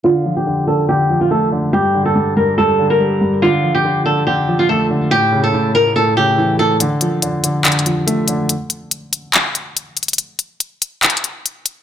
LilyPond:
<<
  \new Staff \with { instrumentName = "Nylon-string guitar" } { \time 4/4 \key d \minor \tempo 4 = 142 f'8. g'8. a'8 g'8. f'16 a'8 r8 | g'8. a'8. bes'8 a'8. bes'4~ bes'16 | f'8. g'8. a'8 g'8. f'16 a'8 r8 | g'8. a'8. bes'8 a'8 g'4 a'8 |
r1 | r1 | r1 | }
  \new Staff \with { instrumentName = "Grand piano" } { \clef bass \time 4/4 \key d \minor d8 f8 d8 d8 d8 f8 a8 d8 | g,8 d8 g,8 g,8 g,8 d8 g8 g,8 | d8 f8 d8 d8 d8 f8 a8 d8 | a,8 cis8 a,8 a,8 a,8 cis8 e8 a,8 |
d8 f8 d8 d8 d8 f8 a8 d8 | r1 | r1 | }
  \new DrumStaff \with { instrumentName = "Drums" } \drummode { \time 4/4 r4 r4 r4 r4 | r4 r4 r4 r4 | r4 r4 r4 r4 | r4 r4 r4 r4 |
hh8 hh8 hh8 hh8 \tuplet 3/2 { <hc hh>16 hh16 hh16 hh16 r16 r16 } hh8 hh8 | hh8 hh8 hh8 hh8 <hc hh>8 hh8 hh8 <hh hho>32 hh32 hh32 hh32 | hh8 hh8 hh8 hh8 \tuplet 3/2 { <hc hh>16 hh16 hh16 hh16 r16 r16 } hh8 hh8 | }
>>